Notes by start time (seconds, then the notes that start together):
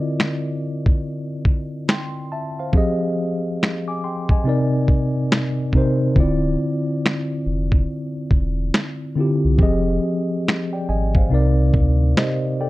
Already playing: D3 C4 E4 F4 A#4 D5 D#5
0.20 finger snap, snare
0.86 kick
1.45 kick
1.89 G5 C6, finger snap, snare
2.32 E5 A5
2.59 C5 F5
2.73 F3 C4 G4 G#4, kick
2.77 D#5
3.63 finger snap, snare
3.88 G#5 D6
4.04 G5 C6
4.29 D#5 G#5, kick
4.44 C3 C4 D#4 A#4
4.49 D5
4.88 kick
5.32 finger snap, snare
5.73 C3 C4 D#4 A#4, kick
5.77 C5
6.15 D1 D3 C4 E4 F4, kick
6.20 D5
7.06 finger snap, snare
7.46 F1
7.72 kick
8.31 E1, kick
8.74 finger snap, snare
9.15 D3 C4 E4 F4
9.20 G4
9.45 C2
9.57 F1 F3 C4 G4 G#4, kick
9.63 D#5
10.48 finger snap, snare
10.73 D5 G5
10.89 G#1 D#5 G#5
11.15 C5 F5, kick
11.29 C2 C3 C4 D#4
11.33 A#4 D5
11.74 D2, kick
12.17 G4 C5 D#5, finger snap, snare
12.61 A4 D5 G5